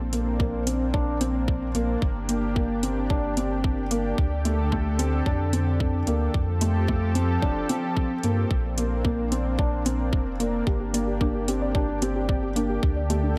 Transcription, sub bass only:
0.00 1.74 A#1 medium
1.75 1.96 A#1 loud
2.02 4.14 G1 loud
4.18 5.22 D2 medium
5.26 6.03 F2 medium
6.07 6.29 D2 medium
6.34 7.38 F2 medium
7.42 7.64 F1 medium
8.24 8.45 G2 medium
8.51 10.12 A#1 loud
10.13 10.62 F1 loud
10.67 12.79 G1 loud
12.83 13.38 D2 medium

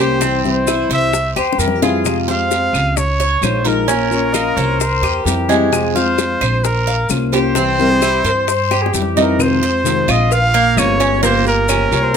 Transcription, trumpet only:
0.00 0.42 C5 medium
0.47 0.89 C5 medium
0.93 1.35 E5 loud
2.30 2.99 F5 loud
2.97 3.45 C#5 loud
3.44 3.69 C5 medium
3.68 5.51 A#4 medium
5.95 6.66 C5 loud
6.64 7.10 A#4 loud
7.33 8.90 C5 loud
9.18 9.43 A#4 medium
9.42 10.12 C5 loud
10.11 10.34 D#5 loud
10.33 10.80 F5 loud
10.79 11.23 C#5 loud
11.23 11.45 C5 loud
11.47 12.17 A#4 loud

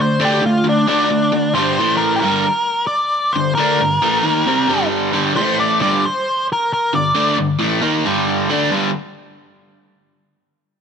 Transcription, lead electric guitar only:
0.01 0.22 C5 medium
0.25 0.45 G4 medium
0.46 0.66 F4 loud
0.69 0.88 D4 loud
0.89 1.54 D4 medium
1.54 1.97 C5 medium
1.97 2.13 A#4 medium
2.16 2.23 G4 medium
2.16 2.84 A#4 loud
2.87 3.35 D5 loud
3.33 3.55 C5 loud
3.55 4.87 A#4 medium
5.36 5.57 C5 loud
5.60 5.81 D5 medium
5.82 6.05 D5 loud
6.06 6.46 C5 medium
6.52 6.71 A#4 medium
6.74 6.93 A#4 medium
6.95 7.36 D5 medium

